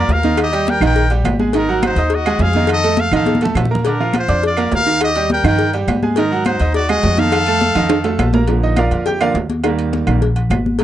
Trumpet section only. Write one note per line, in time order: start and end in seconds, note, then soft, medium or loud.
0.11 0.39 A#4 medium
0.11 0.39 F5 loud
0.40 0.66 G4 medium
0.40 0.66 D#5 loud
0.68 0.82 A#4 medium
0.68 0.82 G5 loud
0.84 1.10 A#4 medium
0.84 1.10 G5 loud
1.56 1.82 D#4 medium
1.56 1.82 A#4 medium
1.84 2.11 D#4 medium
1.84 2.10 C5 medium
2.12 2.41 F#4 medium
2.12 2.41 D#5 loud
2.40 2.70 G#4 loud
2.40 2.69 F5 loud
2.70 2.97 A4 medium
2.70 2.97 D#5 loud
2.99 3.12 A4 medium
2.99 3.12 F5 loud
3.13 3.40 A4 medium
3.13 3.40 F5 medium
3.87 4.13 D4 medium
3.87 4.13 A#4 medium
4.16 4.44 F4 medium
4.16 4.44 C5 loud
4.45 4.71 F4 medium
4.45 4.71 D5 medium
4.74 5.00 A#4 medium
4.74 5.00 F5 loud
5.03 5.29 G4 medium
5.03 5.29 D#5 loud
5.31 5.44 A#4 medium
5.31 5.44 G5 loud
5.45 5.72 A#4 medium
5.45 5.72 G5 loud
6.17 6.44 D#4 medium
6.17 6.44 A#4 medium
6.45 6.73 D#4 medium
6.45 6.72 C5 medium
6.74 6.88 F#4 medium
6.74 6.87 D5 loud
6.88 7.18 F#4 medium
6.88 7.18 D#5 loud
7.17 8.35 A4 loud
7.17 8.33 F5 loud